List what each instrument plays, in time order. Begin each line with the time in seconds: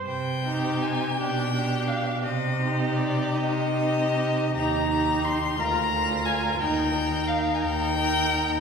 0.07 cello C3, violin G5
0.43 viola D#4, violin G4
0.82 violin G#5
1.17 cello B2, viola D4, violin G4 G5
1.55 viola D4, violin G4
1.87 violin F5
2.24 cello C3, violin D#5
2.61 viola D#4, violin G4
2.96 violin D5
3.34 cello C3, violin D#5
3.74 viola D#4, violin G4
4.54 cello D#2, viola D#4, violin G4 A#5
4.91 viola D#4, violin G4
5.25 violin C6
5.59 cello D2, viola F4, violin A#4 A#5
5.90 viola F4, violin A#4
6.26 violin G#5
6.58 cello D#2, viola D#4, violin A#4 G5
6.93 viola D#4, violin A#4
7.27 violin F5
7.54 violin G#5
7.61 cello D#2, violin G5
7.97 viola D#4, violin A#4